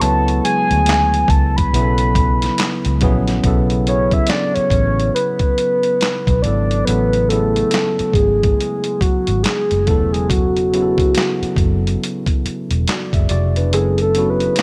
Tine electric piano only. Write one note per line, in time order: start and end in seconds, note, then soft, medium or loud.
0.01 1.33 C#3 medium
0.01 1.34 F#3 medium
0.01 1.35 G#3 medium
0.01 1.34 B3 medium
0.01 1.35 E4 medium
1.73 2.79 C#3 medium
1.73 2.79 F#3 medium
1.73 2.80 B3 medium
1.73 2.80 E4 medium
1.73 1.82 G#4 medium
1.82 2.84 A4 medium
3.02 3.37 C#3 loud
3.02 3.37 F#3 medium
3.02 3.37 B3 loud
3.02 3.38 E4 medium
3.02 3.38 G#4 loud
3.44 3.79 C#3 medium
3.44 3.79 F#3 medium
3.44 3.80 B3 medium
3.44 3.80 E4 medium
3.44 3.81 A4 loud
3.87 5.19 C#3 medium
3.87 5.20 F#3 medium
3.87 5.20 B3 medium
3.87 5.21 E4 medium
3.87 5.21 G#4 medium
6.44 6.79 C#3 medium
6.44 6.79 F#3 medium
6.44 6.80 B3 medium
6.44 6.80 E4 medium
6.44 6.80 A4 medium
6.87 7.22 C#3 medium
6.87 7.22 F#3 medium
6.87 7.23 B3 medium
6.87 7.23 E4 medium
6.87 7.23 A4 medium
7.30 8.62 C#3 medium
7.30 8.63 F#3 medium
7.30 8.63 B3 medium
7.30 8.64 E4 medium
7.30 7.40 G#4 medium
7.40 8.67 A3 medium
9.87 10.59 C#3 medium
9.87 10.60 F#3 medium
9.87 10.60 B3 medium
9.87 10.61 E4 medium
9.87 10.61 A4 loud
10.73 12.05 C#3 medium
10.73 12.06 F#3 medium
10.73 12.06 B3 medium
10.73 12.06 E4 medium
10.73 10.82 G#4 medium
10.82 12.10 A4 medium
12.89 13.13 F#4 medium
12.89 13.12 D5 medium
13.14 13.30 G#4 medium
13.14 13.30 E5 medium
13.30 13.55 F#4 medium
13.30 13.55 D5 medium
13.57 13.97 D4 medium
13.57 13.97 B4 medium
13.72 14.08 C#3 medium
13.72 14.08 F#3 medium
13.72 14.08 B3 medium
13.72 14.09 E4 medium
13.72 14.09 A4 medium
14.16 14.62 C#3 medium
14.16 14.62 F#3 medium
14.16 14.62 B3 medium
14.16 14.62 E4 medium
14.16 14.62 F#4 medium